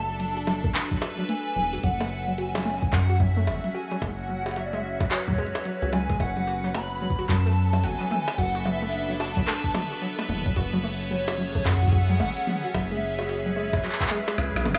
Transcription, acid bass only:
0, 0, Header, 1, 2, 480
1, 0, Start_track
1, 0, Key_signature, 3, "minor"
1, 0, Tempo, 545455
1, 1616, Time_signature, 4, 2, 24, 8
1, 13012, End_track
2, 0, Start_track
2, 0, Title_t, "Acid bass"
2, 0, Program_c, 0, 38
2, 0, Note_on_c, 0, 30, 100
2, 616, Note_off_c, 0, 30, 0
2, 1375, Note_on_c, 0, 28, 84
2, 1566, Note_off_c, 0, 28, 0
2, 1616, Note_on_c, 0, 30, 100
2, 2537, Note_off_c, 0, 30, 0
2, 2575, Note_on_c, 0, 42, 99
2, 3056, Note_on_c, 0, 30, 96
2, 3069, Note_off_c, 0, 42, 0
2, 3165, Note_off_c, 0, 30, 0
2, 3536, Note_on_c, 0, 30, 105
2, 4456, Note_off_c, 0, 30, 0
2, 5124, Note_on_c, 0, 37, 93
2, 5416, Note_off_c, 0, 37, 0
2, 5456, Note_on_c, 0, 30, 104
2, 6377, Note_off_c, 0, 30, 0
2, 6415, Note_on_c, 0, 42, 97
2, 6896, Note_on_c, 0, 30, 101
2, 6909, Note_off_c, 0, 42, 0
2, 7004, Note_off_c, 0, 30, 0
2, 7375, Note_on_c, 0, 30, 97
2, 8296, Note_off_c, 0, 30, 0
2, 9056, Note_on_c, 0, 28, 84
2, 9247, Note_off_c, 0, 28, 0
2, 9295, Note_on_c, 0, 30, 103
2, 10216, Note_off_c, 0, 30, 0
2, 10255, Note_on_c, 0, 42, 99
2, 10735, Note_on_c, 0, 30, 100
2, 10748, Note_off_c, 0, 42, 0
2, 10844, Note_off_c, 0, 30, 0
2, 11216, Note_on_c, 0, 30, 102
2, 12137, Note_off_c, 0, 30, 0
2, 12656, Note_on_c, 0, 37, 95
2, 12765, Note_off_c, 0, 37, 0
2, 12805, Note_on_c, 0, 35, 94
2, 12897, Note_on_c, 0, 30, 107
2, 12910, Note_off_c, 0, 35, 0
2, 13005, Note_off_c, 0, 30, 0
2, 13012, End_track
0, 0, End_of_file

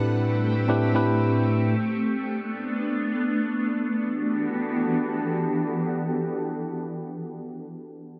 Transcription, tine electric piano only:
0, 0, Header, 1, 2, 480
1, 0, Start_track
1, 0, Key_signature, 1, "minor"
1, 0, Tempo, 500000
1, 7868, End_track
2, 0, Start_track
2, 0, Title_t, "Tine electric piano"
2, 0, Program_c, 0, 4
2, 0, Control_c, 0, 64, 127
2, 0, Note_on_c, 0, 45, 87
2, 0, Note_on_c, 0, 60, 81
2, 0, Note_on_c, 0, 62, 79
2, 0, Note_on_c, 0, 64, 76
2, 0, Note_on_c, 0, 67, 76
2, 0, Note_on_c, 0, 71, 93
2, 457, Note_off_c, 0, 45, 0
2, 459, Note_off_c, 0, 60, 0
2, 461, Note_off_c, 0, 62, 0
2, 463, Note_off_c, 0, 64, 0
2, 465, Note_off_c, 0, 67, 0
2, 467, Note_off_c, 0, 71, 0
2, 650, Note_on_c, 0, 45, 86
2, 653, Note_on_c, 0, 60, 74
2, 657, Note_on_c, 0, 62, 77
2, 660, Note_on_c, 0, 64, 74
2, 664, Note_on_c, 0, 67, 78
2, 668, Note_on_c, 0, 71, 92
2, 857, Note_off_c, 0, 45, 0
2, 858, Note_off_c, 0, 60, 0
2, 861, Note_off_c, 0, 62, 0
2, 862, Note_off_c, 0, 64, 0
2, 864, Note_off_c, 0, 67, 0
2, 866, Note_off_c, 0, 71, 0
2, 903, Note_on_c, 0, 45, 75
2, 906, Note_on_c, 0, 60, 70
2, 909, Note_on_c, 0, 62, 68
2, 913, Note_on_c, 0, 64, 73
2, 917, Note_on_c, 0, 67, 73
2, 921, Note_on_c, 0, 71, 89
2, 1512, Note_off_c, 0, 45, 0
2, 1513, Note_off_c, 0, 60, 0
2, 1515, Note_off_c, 0, 62, 0
2, 1517, Note_off_c, 0, 64, 0
2, 1518, Note_off_c, 0, 67, 0
2, 1520, Note_off_c, 0, 71, 0
2, 1673, Control_c, 0, 64, 0
2, 7868, End_track
0, 0, End_of_file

